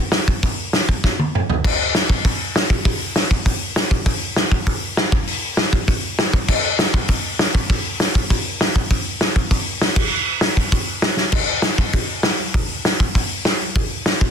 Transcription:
0.12 snare, open hi-hat
0.28 kick
0.43 kick, open hi-hat
0.73 snare, open hi-hat
0.89 kick
1.04 kick, snare
1.19 high tom
1.35 mid tom
1.50 floor tom
1.64 kick, crash
1.95 snare, open hi-hat
2.10 kick
2.25 kick, open hi-hat
2.56 snare, open hi-hat
2.70 kick
2.85 kick, open hi-hat
3.16 snare, open hi-hat
3.31 kick
3.46 kick, open hi-hat
3.76 snare, open hi-hat
3.91 kick
4.06 kick, open hi-hat
4.36 snare, open hi-hat
4.52 kick
4.67 kick, open hi-hat
4.97 snare, open hi-hat
5.12 kick
5.27 open hi-hat
5.57 snare, open hi-hat
5.73 kick
5.88 kick, open hi-hat
6.19 snare, open hi-hat
6.33 kick
6.48 kick, crash
6.79 snare, open hi-hat
6.94 kick
7.08 kick, open hi-hat
7.39 snare, open hi-hat
7.55 kick
7.70 kick, open hi-hat
8.00 snare, open hi-hat
8.15 kick
8.30 kick, open hi-hat
8.61 snare, open hi-hat
8.76 kick
8.91 kick, open hi-hat
9.21 snare, open hi-hat
9.36 kick
9.51 kick, open hi-hat
9.81 snare, open hi-hat
9.96 kick, crash
10.41 snare, open hi-hat
10.57 kick
10.72 kick, open hi-hat
11.02 snare, open hi-hat
11.17 snare
11.32 kick, crash
11.62 snare, open hi-hat
11.78 kick
11.93 kick, open hi-hat
12.23 snare, open hi-hat
12.54 kick
12.85 snare, open hi-hat
13.00 kick
13.15 kick, open hi-hat
13.45 snare, open hi-hat
13.76 kick, open hi-hat
14.06 snare, open hi-hat
14.21 kick

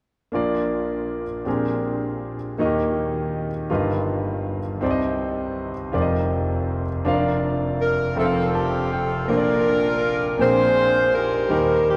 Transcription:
0.32 A#1 A#2 A#3 D4 F4 A#4 D5
1.45 A#1 A#2 C4 D4 G4 G#4 A#4
2.58 D#2 D#3 A#3 D#4 F#4 A#4 D#5
2.65 G4
3.70 G1 G2 F4 G4 A#4 B4 D#5
4.81 C2 C3 C4 D#4 G4 C5 D5
4.91 D#5
5.92 F1 F2 F4 G4 A#4 C5 D5
6.02 D#5
7.05 F1 F2 D4 F4 A#4 C5 F5
7.14 D5
7.82 A#4
8.15 F1 F2 C4 F4 A4 C5 E5
8.19 C4 F4 A4
8.25 F5
8.55 G4 A5
8.92 A4 G5
9.28 A#1 A#2 A#3 D4 F4 A#4 C5
9.37 D5
10.38 A#1 A#2 C4 D4 G#4 A#4 G5
10.42 F4 G#4 C5
11.15 D#4 G4 A#4
11.48 D#2 D#3 G3 A#3 D#4 G4 A#4
11.90 G4

